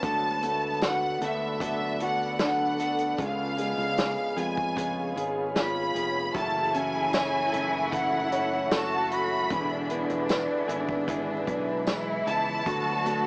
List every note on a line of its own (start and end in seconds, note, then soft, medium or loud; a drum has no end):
0.00 1.17 D2 medium
0.00 3.15 D3 medium
0.00 0.43 D3 medium
0.00 0.43 F#3 medium
0.00 0.43 B3 medium
0.00 3.15 A4 medium
0.00 3.15 D5 medium
0.00 3.15 F#5 medium
0.00 0.79 A5 loud
0.00 6.31 B5 medium
0.00 kick loud
0.00 closed hi-hat medium
0.04 0.42 F#4 medium
0.04 0.41 A4 medium
0.42 1.20 A3 medium
0.42 1.24 B3 soft
0.42 1.22 F#4 soft
0.42 1.20 A4 medium
0.42 closed hi-hat medium
0.81 2.00 F#4 medium
0.81 1.23 F#5 medium
0.81 snare loud
0.81 closed hi-hat medium
1.21 3.15 D2 medium
1.21 2.75 A3 medium
1.21 1.60 B3 soft
1.21 1.60 F#4 soft
1.21 1.61 A4 soft
1.21 1.62 E5 medium
1.21 closed hi-hat medium
1.60 2.00 D3 medium
1.60 2.00 F#3 medium
1.60 2.00 B3 medium
1.60 1.99 F#4 medium
1.60 1.98 A4 medium
1.60 1.99 E5 medium
1.60 kick medium
1.60 closed hi-hat medium
1.99 2.39 B3 soft
1.99 2.40 F#4 soft
1.99 3.16 F#4 medium
1.99 2.39 A4 soft
1.99 closed hi-hat medium
2.04 2.42 F#5 medium
2.39 2.79 F#3 medium
2.39 2.80 B3 medium
2.39 3.17 D4 medium
2.39 2.79 F#4 medium
2.39 2.77 A4 medium
2.39 snare loud
2.39 closed hi-hat medium
2.45 3.17 F#5 medium
2.79 3.18 B3 soft
2.79 3.19 F#4 soft
2.79 3.18 A4 soft
2.79 closed hi-hat medium
2.98 closed hi-hat medium
3.18 3.74 C#2 medium
3.18 3.58 C#3 medium
3.18 6.30 C#3 medium
3.18 3.58 G#3 medium
3.18 3.58 B3 medium
3.18 3.58 F4 medium
3.18 6.32 G#4 medium
3.18 3.56 G#4 medium
3.18 6.31 C#5 medium
3.18 6.32 F5 medium
3.18 kick loud
3.18 closed hi-hat medium
3.23 4.40 F5 loud
3.57 4.36 G#3 medium
3.57 4.37 B3 soft
3.57 4.37 F4 soft
3.57 4.35 G#4 soft
3.57 closed hi-hat medium
3.78 4.15 C#2 medium
3.98 5.15 G#4 medium
3.98 snare medium
3.98 closed hi-hat medium
4.37 5.12 F2 medium
4.37 5.91 G#3 soft
4.37 4.75 B3 soft
4.37 4.76 F4 soft
4.37 4.76 G#4 soft
4.37 5.17 G#5 medium
4.37 closed hi-hat medium
4.57 kick medium
4.76 5.16 C#3 medium
4.76 5.16 G#3 medium
4.76 5.16 B3 medium
4.76 5.16 F4 medium
4.76 5.15 G#4 medium
4.76 kick medium
4.76 closed hi-hat medium
5.16 5.91 G#1 medium
5.16 5.55 B3 soft
5.16 5.55 F4 soft
5.16 5.55 G#4 soft
5.16 6.31 G#4 soft
5.16 closed hi-hat medium
5.55 5.95 G#3 medium
5.55 5.95 B3 medium
5.55 6.33 F4 medium
5.55 5.94 F4 medium
5.55 5.93 G#4 medium
5.55 6.32 B5 loud
5.55 snare loud
5.55 closed hi-hat medium
5.94 6.32 F1 medium
5.94 6.35 B3 soft
5.94 6.35 F4 soft
5.94 6.34 G#4 soft
5.94 closed hi-hat medium
6.33 7.49 F#1 medium
6.33 6.74 F#2 medium
6.33 6.74 C#3 medium
6.33 8.67 E3 medium
6.33 6.74 E3 medium
6.33 9.46 F#3 medium
6.33 6.74 A3 medium
6.33 6.73 C#4 medium
6.33 8.66 E4 medium
6.33 9.47 A4 medium
6.33 6.72 A4 medium
6.33 12.62 E5 medium
6.33 9.47 F#5 medium
6.33 6.75 A5 loud
6.33 9.47 C#6 medium
6.33 kick loud
6.33 closed hi-hat medium
6.73 7.54 E3 soft
6.73 7.52 A3 soft
6.73 7.52 C#4 soft
6.73 7.52 C#4 medium
6.73 7.51 A4 soft
6.73 7.93 G#5 loud
6.73 closed hi-hat medium
7.13 8.31 C#5 soft
7.13 snare medium
7.13 closed hi-hat medium
7.13 tambourine medium
7.52 9.46 F#1 loud
7.52 7.91 E3 soft
7.52 7.92 A3 soft
7.52 7.92 C#4 soft
7.52 9.07 C#4 soft
7.52 7.92 A4 soft
7.52 closed hi-hat medium
7.92 8.32 F#2 medium
7.92 8.32 C#3 medium
7.92 8.32 E3 medium
7.92 8.32 A3 medium
7.92 8.32 C#4 medium
7.92 8.31 A4 medium
7.92 8.72 F#5 medium
7.92 kick medium
7.92 closed hi-hat medium
8.32 8.70 E3 soft
8.32 8.72 A3 soft
8.32 8.72 C#4 soft
8.32 8.71 A4 medium
8.32 9.47 C#5 medium
8.32 closed hi-hat medium
8.71 9.11 E3 medium
8.71 9.49 F#3 medium
8.71 9.12 A3 medium
8.71 9.11 C#4 medium
8.71 9.49 F#4 medium
8.71 9.48 A4 medium
8.71 9.10 A4 medium
8.71 9.10 A5 medium
8.71 snare loud
8.71 closed hi-hat medium
8.71 tambourine medium
9.11 9.50 E3 soft
9.11 9.51 A3 soft
9.11 9.51 C#4 soft
9.11 9.51 A4 soft
9.11 9.91 B5 medium
9.11 closed hi-hat medium
9.50 10.06 E1 medium
9.50 11.83 D3 medium
9.50 9.90 E3 medium
9.50 12.63 E3 medium
9.50 12.64 G#3 medium
9.50 9.90 B3 medium
9.50 11.83 D4 medium
9.50 9.90 E4 medium
9.50 9.88 G#4 medium
9.50 12.63 B4 medium
9.50 13.27 B5 medium
9.50 kick loud
9.50 closed hi-hat medium
9.90 10.66 B3 medium
9.90 10.70 B3 soft
9.90 10.68 E4 soft
9.90 10.67 G#4 medium
9.90 closed hi-hat medium
10.10 10.46 E1 loud
10.10 closed hi-hat soft
10.29 11.45 B4 medium
10.29 snare medium
10.29 closed hi-hat medium
10.29 tambourine medium
10.68 11.44 G#1 medium
10.68 12.22 B3 medium
10.68 11.08 B3 soft
10.68 11.09 E4 medium
10.68 11.08 G#4 soft
10.68 closed hi-hat medium
10.89 kick medium
11.08 11.48 E3 medium
11.08 11.48 B3 medium
11.08 11.48 E4 medium
11.08 11.46 G#4 loud
11.08 kick medium
11.08 closed hi-hat medium
11.47 12.22 B1 medium
11.47 11.87 B3 soft
11.47 11.87 E4 medium
11.47 11.87 G#4 medium
11.47 12.62 B4 medium
11.47 kick medium
11.47 closed hi-hat medium
11.86 12.64 E3 medium
11.86 12.66 E3 medium
11.86 12.64 G#3 medium
11.86 12.67 B3 medium
11.86 12.64 E4 medium
11.86 12.67 E4 medium
11.86 snare loud
11.86 closed hi-hat medium
11.86 tambourine medium
12.27 12.63 C#2 medium
12.27 13.27 A5 loud
12.27 closed hi-hat medium
12.64 13.27 D2 loud
12.64 13.27 D3 medium
12.64 13.06 D3 medium
12.64 13.27 F#3 medium
12.64 13.06 F#3 medium
12.64 13.06 B3 medium
12.64 13.27 F#4 medium
12.64 13.05 F#4 medium
12.64 13.04 A4 medium
12.64 13.27 D5 medium
12.64 13.27 F#5 medium
12.64 kick loud
12.64 closed hi-hat medium
12.69 13.27 A4 medium
13.05 13.27 A3 medium
13.05 13.27 B3 soft
13.05 13.27 F#4 soft
13.05 13.27 A4 soft
13.05 closed hi-hat medium